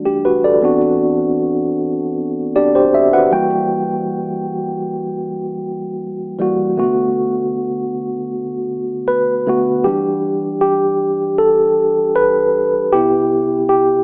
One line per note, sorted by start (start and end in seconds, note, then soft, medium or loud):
0.05 0.24 D4 soft
0.05 0.23 G4 medium
0.25 0.43 F#4 medium
0.25 0.43 B4 medium
0.44 0.81 A4 medium
0.44 0.80 D5 medium
0.62 1.63 E3 medium
0.62 1.63 B3 medium
0.62 1.63 C4 medium
0.62 1.64 D4 medium
0.62 1.64 F#4 medium
2.56 2.74 D4 medium
2.56 2.74 G4 medium
2.56 2.91 D5 medium
2.75 3.12 G4 medium
2.75 3.11 C5 medium
2.94 3.12 E5 medium
3.13 3.33 F#4 medium
3.13 3.49 B4 medium
3.13 3.31 F#5 medium
3.31 4.55 E3 medium
3.31 4.55 G3 medium
3.31 4.56 A#3 medium
3.31 4.56 F#4 medium
3.31 3.68 G5 medium
6.39 6.64 E3 medium
6.39 6.65 G3 medium
6.39 6.65 A#3 medium
6.39 6.66 F#4 medium
6.77 6.84 C3 medium
6.77 7.78 A3 medium
6.77 7.79 B3 medium
6.77 7.79 F#4 medium
6.84 7.81 D3 medium
9.08 9.87 B4 medium
9.47 9.72 D3 medium
9.47 9.72 A3 medium
9.47 9.73 B3 medium
9.47 9.73 F#4 medium
9.84 10.97 E3 medium
9.84 10.97 G3 medium
9.84 10.97 D4 medium
9.84 10.60 G4 loud
10.61 11.41 G4 medium
11.38 12.18 A4 medium
12.16 12.95 B4 loud
12.93 13.45 C3 medium
12.93 13.45 B3 soft
12.93 13.45 E4 medium
12.93 13.68 G4 loud
13.69 14.04 G4 medium